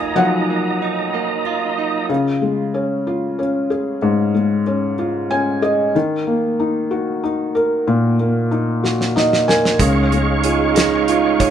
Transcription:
Already playing: D#2 F#3 A#3 D#4 F4 D#5 G#5 A#5
0.16 F3 F#3 D#4 F#5
0.50 A#3
0.82 D#4
1.14 A#3
1.46 F4
1.78 D#4
2.09 C#3
2.42 G#3
2.74 C#4
3.07 F4
3.39 C#4
3.70 G#4
4.02 G#2
4.34 G#3
4.67 C#4
4.99 F4
5.31 C#4 G#5
5.62 G#4 D#5
5.95 D#3
6.27 A#3
6.60 D#4
6.91 F#4
7.24 D#4
7.55 A#4
7.87 A#2
8.19 A#3
8.51 D#4
8.84 F#4, snare
9.01 snare
9.16 D#4 D#5, snare
9.33 snare
9.48 A#4 G#5, snare
9.65 snare
9.79 C#2 C#3 G#3 D#4 G#4 C#5 F5 C#6, kick, closed hi-hat
10.11 G#3, closed hi-hat
10.44 C#4 F4, closed hi-hat
10.75 G#3 G#4, snare, closed hi-hat
11.08 F4, closed hi-hat
11.40 C#4 C#5, kick, closed hi-hat

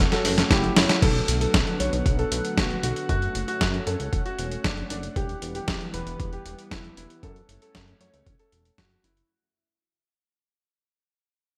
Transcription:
Already playing: A3 C#4 F#4
0.12 F#4 A4, snare, closed hi-hat
0.25 F#1, open hi-hat
0.38 snare, closed hi-hat
0.51 F#1 E4 G4, kick, snare, closed hi-hat
0.64 closed hi-hat
0.77 F#1 C#4 E4, snare, open hi-hat
0.89 snare, closed hi-hat
1.02 B1 D3 F#3 A3 B3 A4 F#5, kick, closed hi-hat, crash
1.15 closed hi-hat
1.28 B1, closed hi-hat
1.41 A4, closed hi-hat
1.54 B1, kick, snare, closed hi-hat
1.67 closed hi-hat
1.80 B1 C#5, closed hi-hat
1.93 B1, closed hi-hat
2.06 B1, kick, closed hi-hat
2.19 A4, closed hi-hat
2.32 B1, closed hi-hat
2.45 closed hi-hat
2.57 B1 F#4, kick, snare, closed hi-hat
2.71 closed hi-hat
2.83 B1 F#4, closed hi-hat
2.96 closed hi-hat
3.09 F#2 C#4 F#4, kick, closed hi-hat
3.22 closed hi-hat
3.35 F#1, closed hi-hat
3.48 F#4, closed hi-hat
3.61 F#2, kick, snare, closed hi-hat
3.74 closed hi-hat
3.87 F#2 A4, closed hi-hat
4.00 C#2, closed hi-hat
4.13 E1, kick, closed hi-hat
4.26 F#4, closed hi-hat
4.39 E1, closed hi-hat
4.51 closed hi-hat
4.64 F#1 D4, kick, snare, closed hi-hat
4.77 closed hi-hat
4.90 F#1 D4, closed hi-hat
5.03 closed hi-hat
5.16 E1 E3 G3 B3 G4, kick, closed hi-hat
5.29 closed hi-hat
5.42 E1, closed hi-hat
5.55 G4, closed hi-hat
5.68 E1, kick, snare, closed hi-hat
5.81 closed hi-hat
5.94 E1 B4, closed hi-hat
6.07 E1, closed hi-hat
6.20 E1, kick, closed hi-hat
6.33 G4, closed hi-hat
6.46 E1, closed hi-hat
6.59 closed hi-hat
6.71 E1 E4, kick, snare, closed hi-hat
6.84 closed hi-hat
6.97 E1 E4, closed hi-hat
7.10 closed hi-hat
7.23 F#2 A3 C#4 A4, kick, closed hi-hat
7.36 closed hi-hat
7.49 F#1, closed hi-hat
7.62 A4, closed hi-hat
7.75 F#2, kick, snare, closed hi-hat
7.88 closed hi-hat
8.01 F#2 C#5, closed hi-hat
8.14 C#2, closed hi-hat
8.27 E1, kick, closed hi-hat
8.39 A4, closed hi-hat
8.52 E1, closed hi-hat
8.65 closed hi-hat
8.78 F#1 F#4, kick, snare, closed hi-hat
8.91 closed hi-hat
9.04 F#1 E4, closed hi-hat
9.17 closed hi-hat

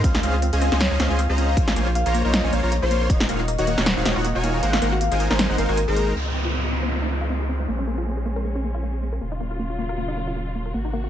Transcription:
0.04 C#2 C4 C#4 G#4 C5 D#5 F5, kick, closed hi-hat
0.14 D#4, snare
0.23 C#2 C4 C#4 G#4 C5 D#5 F5, closed hi-hat
0.34 F4
0.42 C4, closed hi-hat
0.53 C#2 C#4 G#4 C5 D#5 F5 G#5, closed hi-hat
0.61 C4, closed hi-hat
0.72 C#2 C#4 G#4 C5 D#5 G#5, snare
0.81 C4 C#5, snare, closed hi-hat
0.91 C#2 C#4 D#4 G#4 C5 D#5 F5
1.00 C#2 C4 C#4 G#4 C5 D#5 F5, snare, closed hi-hat
1.10 C#2 C#4 F4 G#4 C5 D#5 F5 G#5
1.19 C4, closed hi-hat
1.29 C#2 C#4 G#4 C5 D#5 A#5
1.38 C4 F5, closed hi-hat
1.49 C5
1.57 A#1 A#3 F4 C5 C#5 G#5, kick, closed hi-hat
1.67 C#4 F5, snare
1.76 A#1 A#3 F4 C5 C#5 G#5, closed hi-hat
1.87 F4
1.95 A#3 F5, closed hi-hat
2.06 A#1 A#3 F4 G#4 C5 C#5 A#5, closed hi-hat
2.14 A#3, closed hi-hat
2.25 A#1 A#3 F4 A#4 C5 C#5 D#5 A#5
2.33 A#3, snare, closed hi-hat
2.44 A#1 A#3 C#4 F4 C5 C#5 G#5
2.53 A#1 A#3 F4 C5 C#5 F5, closed hi-hat
2.63 A#1 A#3 F4 C5 C#5 A#5
2.72 A#3, closed hi-hat
2.82 A#1 A#3 F4 G#4 C5 C#5 C6
2.91 A#3, closed hi-hat
3.01 A#4
3.10 D#1 D#3 A#3 D#4 F#4 C#5 D#5 F5, kick, closed hi-hat
3.20 D#4, snare
3.29 D#1 D#3 A#3 D#4 F#4 C#5 D#5 F5, closed hi-hat
3.39 F4
3.48 A#3, closed hi-hat
3.59 D#1 D#3 D#4 F#4 C#5 D#5 F#5, closed hi-hat
3.67 A#3, closed hi-hat
3.77 D#1 D#3 D#4 F#4 A#4 C#5 F#5, snare
3.86 A#3 C5, snare, closed hi-hat
3.97 D#1 D#3 D#4 F#4 C#5 F5
4.05 D#1 D#3 A#3 D#4 F#4 C#5 D#5, snare, closed hi-hat
4.16 D#1 D#3 D#4 F4 F#4 C#5 D#5 F#5
4.25 A#3, closed hi-hat
4.35 D#1 D#3 D#4 F#4 C#5 G#5
4.43 A#3 F5, closed hi-hat
4.54 A#4
4.63 G#1 G#3 A#3 D#4 A#4 C5 F#5, closed hi-hat
4.73 D#4 F5, snare
4.82 G#1 G#3 A#3 D#4 A#4 C5 F#5, closed hi-hat
4.92 F#4
5.01 A#3 F5, closed hi-hat
5.11 G#1 G#3 D#4 G#4 A#4 C5 G#5, closed hi-hat
5.20 A#3, closed hi-hat
5.30 G#1 G#3 D#4 A#4 C5 G#5, snare
5.39 A#3, snare, closed hi-hat
5.50 G#1 G#3 D#4 A#4 C5 F#5
5.58 G#1 G#3 A#3 D#4 A#4 C5 F5, closed hi-hat
5.69 G#1 G#3 D#4 F#4 A#4 C5 G#5
5.77 A#3, closed hi-hat
5.87 G#1 G#3 D#4 G#4 A#4 C5 A#5
5.96 A#3, closed hi-hat
6.07 A#4
6.15 C#2 F3 C4 D#4, downlifter
6.26 D#4
6.34 C4
6.45 F4
6.54 C4
6.64 G#4
6.73 C4
6.83 C5
6.92 C4
7.02 D#4
7.11 C4
7.21 F4
7.30 C4
7.40 G#4
7.49 C4
7.60 C5
7.68 A#1 G#3 A#3 C#4
7.79 C#4
7.87 A#3
7.98 F4
8.07 A#3
8.17 G#4
8.26 A#3
8.36 A#4
8.45 A#3
8.55 C#4
8.64 A#3
8.74 F4
8.83 A#3
8.94 G#4
9.02 A#3
9.12 A#4
9.21 D#1 C#3 F#3 A#3 F4
9.32 D#4
9.40 A#3
9.51 F4
9.59 A#3
9.70 F#4
9.79 A#3
9.89 A#4
9.98 A#3
10.08 D#4
10.17 A#3
10.27 F4
10.36 A#3
10.47 F#4
10.55 A#3
10.66 A#4
10.74 G#1 C3 A#3 F#4
10.85 D#4
10.93 A#3
11.04 F#4

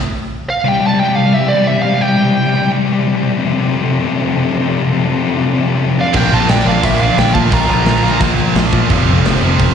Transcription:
0.50 F5
0.64 C3 E3 G3 E4 G4
0.68 C3 G5
0.73 G3
0.79 C3 G3
0.87 C3 G3 A5
0.94 C3 G3
1.00 C3 G3 G5
1.08 C3 G3
1.15 C3 G3 F5
1.24 C3 G3
1.32 C3 G3 E5
1.39 C3 G3
1.47 C3 G3 D5
1.55 C3 G3
1.62 C3 G3
1.67 C3 G3 E5
1.77 C3 G3
1.82 C3 G3 F5
1.92 C3 G3
2.00 C3 G3 G5
2.08 C3 G3
2.15 C3 G3
2.23 C3 G3
2.31 C3 G3
2.38 C3 G3
2.47 C3 G3
2.53 C3 G3
2.61 C3 G3
2.69 C3 G3
2.77 C3 G3
2.84 C3 G3
2.92 C3 G3
2.98 C3 G3
3.08 C3 G3
3.14 C3 G3
3.23 C3 G3
3.30 C3 G3
3.37 F2 C3 F3 A3 F4 A4
3.45 F2 C3
3.52 F2 C3
3.61 F2 C3
3.67 F2 C3
3.76 F2 C3
3.83 F2 C3
3.91 F2 C3
3.99 F2 C3
4.06 F2 C3
4.14 F2 C3
4.21 F2 C3
4.29 F2 C3
4.37 F2 C3
4.44 F2 C3
4.52 F2 C3
4.59 F2 C3
4.68 F2 C3
4.76 F2 C3
4.83 F2 C3
4.92 F2 C3
4.99 F2 C3
5.07 F2 C3
5.15 F2 C3
5.22 F2 C3
5.30 F2 C3
5.37 F2 C3
5.45 F2 C3
5.53 F2 C3
5.60 F2 C3
5.67 F2 C3
5.76 F2 C3
5.82 F2 C3
5.91 F2 C3
5.98 F2 C3 D4 F5
6.06 F2 C3
6.13 A#1 A#2 D3 F3 A#3 D4 F4 A#4 G5, kick, crash
6.23 A#2 F3
6.31 A#1 A#2 F3 F4 A5
6.39 A#2 F3
6.46 A#1 A#2 F3 D4 G5, snare, open hi-hat
6.54 A#2 F3
6.59 A#2 F3, snare
6.64 A#1 A#3 D4 F5
6.69 A#2 F3
6.77 A#2 F3
6.81 A#1 A#3 E5, kick, open hi-hat
6.85 A#2 F3
6.94 A#2 F3
6.99 A#2 F3 D4 F5
7.09 A#2 F3
7.17 A#1 A#2 F3 D4 G5, snare, open hi-hat
7.26 A#2 F3
7.32 A#2 F3 F4 A5, kick
7.40 A#2 F3
7.50 A#1 A#2 F3 A#3 F4 A#5, kick, open hi-hat
7.58 A#2 F3
7.65 A#2 F3
7.69 A#1 A#2
7.74 F3
7.81 A#1 A#2 F3
7.86 A#2 F3, snare, open hi-hat
7.96 A#2 F3, snare
8.02 A#1 A#2 F3 A#3
8.12 A#2 F3
8.20 A#1 A#2 F3, kick, open hi-hat
8.27 A#2 F3
8.35 A#2 F3
8.42 A#2 F3
8.51 A#1 A#2 F3
8.55 A#2 F3, snare, open hi-hat
8.66 A#2 F3
8.73 A#2 F3, kick
8.81 A#2 F3
8.89 F1 F2 C3 F3 A3 A4, kick, open hi-hat
8.97 F2 C3
9.05 F1 F2 C3
9.13 F2 C3
9.20 F2 C3
9.25 F1 F2 C3, snare, open hi-hat
9.35 F2 C3, snare
9.41 F1 F2 C3 F3
9.50 F2 C3
9.58 F1 F2 C3, kick, open hi-hat
9.65 F2 C3

